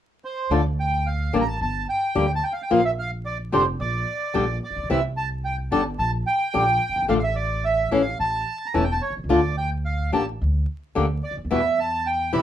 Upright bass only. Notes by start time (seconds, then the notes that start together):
0.50 D2
1.34 A1
1.61 G1
2.16 D2
2.71 A#1
3.52 F1
3.80 A#1
4.35 A#1
4.70 A1
4.76 A#1
4.83 B1
4.90 C2
5.72 G1
5.99 A#1
6.55 A#1
6.89 F#1
6.96 G1
7.02 G#1
7.10 A1
7.92 A1
8.20 A1
8.75 E1
9.10 B1
9.17 C2
9.24 C#2
9.31 D2
10.13 A1
10.41 D2
10.96 D2
11.31 C#2
11.37 D2
11.44 D#2
11.51 E2
12.34 B1